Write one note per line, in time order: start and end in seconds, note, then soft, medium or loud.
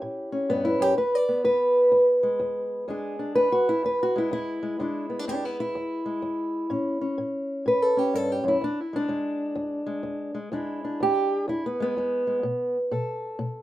0.00 0.46 A2 medium
0.00 0.31 C#4 soft
0.00 0.49 E4 soft
0.00 0.64 G4 soft
0.32 0.95 C#4 soft
0.49 0.79 G2 medium
0.49 0.65 B3 loud
0.65 0.82 E4 medium
0.80 0.97 F#2 medium
0.80 0.97 G4 medium
0.98 1.41 E2 medium
0.98 1.15 B4 medium
1.15 1.44 D5 medium
1.29 2.89 B3 medium
1.44 1.88 E2 medium
1.44 2.88 B4 medium
1.92 2.36 E2 medium
2.23 2.88 G#3 soft
2.40 2.84 E2 medium
2.88 3.32 E2 medium
2.88 4.14 G#3 soft
2.88 3.18 D4 soft
2.88 3.35 G#4 medium
3.19 3.52 D4 soft
3.35 3.80 E2 medium
3.35 3.51 B4 loud
3.52 3.68 F#4 loud
3.69 3.84 E4 loud
3.84 4.28 E2 medium
3.84 4.00 B4 medium
4.03 4.17 F#4 medium
4.16 4.61 G#3 medium
4.16 4.32 E4 medium
4.31 4.75 E2 medium
4.31 4.80 E4 loud
4.63 4.79 G#3 soft
4.79 5.23 E2 medium
4.79 6.04 G#3 soft
4.79 5.09 D4 soft
4.79 5.29 E4 soft
5.10 5.19 B3 soft
5.19 5.27 D4 soft
5.27 5.71 E2 medium
5.27 5.45 D4 medium
5.27 5.45 G4 loud
5.45 5.60 B3 medium
5.45 5.59 E4 medium
5.60 7.03 E4 loud
5.75 6.19 E2 medium
6.06 6.70 G#3 soft
6.22 6.67 E2 medium
6.70 7.14 A2 medium
6.70 7.00 C#4 soft
7.01 7.96 C#4 soft
7.18 7.62 A2 medium
7.66 8.10 A2 medium
7.66 7.82 B4 medium
7.82 7.98 A4 medium
7.97 8.60 C#4 medium
7.97 8.15 G4 medium
8.14 8.43 G2 medium
8.14 8.32 A4 loud
8.32 8.47 G4 medium
8.44 8.61 F#2 medium
8.48 8.63 E4 medium
8.61 9.06 E2 medium
8.61 8.79 D4 medium
8.81 8.95 E4 medium
8.93 9.09 G#3 soft
8.93 10.38 D4 medium
9.08 9.53 E2 medium
9.08 9.85 G#3 soft
9.55 10.00 E2 medium
9.87 10.33 G#3 medium
10.03 10.48 E2 medium
10.35 10.51 G#3 soft
10.52 10.96 E2 medium
10.52 11.78 G#3 medium
10.52 10.83 D4 medium
10.52 11.01 E4 medium
10.85 11.65 D4 soft
11.00 11.44 E2 medium
11.00 11.49 G4 loud
11.48 11.92 E2 medium
11.48 11.64 E4 medium
11.66 11.81 B3 medium
11.80 11.96 G#3 medium
11.80 12.76 B3 medium
11.97 12.40 E2 medium
11.97 12.26 G#3 soft
12.27 12.44 G#3 soft
12.43 12.87 B2 medium
12.91 13.35 B2 medium
12.91 13.62 A4 soft
13.39 13.62 B2 medium